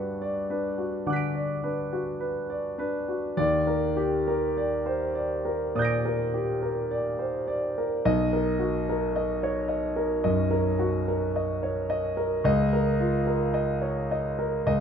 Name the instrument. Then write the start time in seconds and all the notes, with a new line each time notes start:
grand piano
Already playing: G2 D4 F#4 B4 D5 F#5
0.22 D5
0.50 D4 B4
0.78 F#4
1.06 D3 F#5 D6 F#6
1.13 B6 D7
1.35 D5
1.63 D4 B4
1.93 F#4
2.20 B4
2.50 D5
2.78 D4 B4
3.09 F#4
3.37 D#2 D5
3.67 A#4
3.96 G4
4.28 A#4
4.57 D5
4.86 C5
5.15 D5
5.45 A#4
5.75 A#2 D5 D#6 G6
5.82 A#6 D7
6.05 A#4
6.34 G4
6.63 A#4
6.91 D5
7.19 C5
7.47 D5
7.78 A#4
8.05 B1 D#5
8.33 A#4
8.59 F#4
8.89 A#4
9.16 D#5
9.43 C#5
9.68 D#5
9.96 A#4
10.24 F#2 D#5
10.51 A#4
10.79 F#4
11.08 A#4
11.36 D#5
11.63 C#5
11.90 D#5
12.17 A#4
12.44 C#2 D#5
12.73 A#4
13.00 F4
13.27 A#4
13.54 D#5
13.82 C#5
14.11 D#5
14.39 A#4
14.66 C#2 D#5